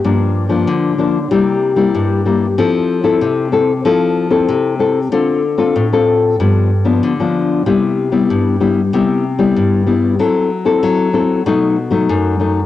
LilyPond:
\new Staff \with { instrumentName = "Nylon-string guitar" } { \time 4/4 \key c \major \tempo 4 = 95 << { <f bes d'>8. <f bes d'>8. <f bes d'>16 r16 <g bes e'>8. <g bes e'>8. <g bes e'>16 r16 | <c' e' a'>8. <c' e' a'>8. <c' e' a'>16 r16 <c' e' a'>8. <c' e' a'>8. <c' e' a'>16 r16 | <c' f' a'>8 r16 <c' f' a'>8 <c' f' a'>8. <f b d'>8 r16 <f b d'>8 <f b d'>8. | <g b e'>8. <g b e'>8. <g b e'>16 r16 <g b e'>8 r16 <g b e'>8. <g b e'>8 |
<c' e' a'>8 r16 <c' e' a'>8. <c' e' a'>8 <fis a dis'>8 r16 <fis a dis'>8. <fis a dis'>16 r16 | } \\ { g,4 d4 c4 g,4 | f4 c4 f4 c4 | d4 a,4 g,4 d4 | c4 g,4 c4 g,4 |
fis4 fis4 b,4 fis,4 | } >> }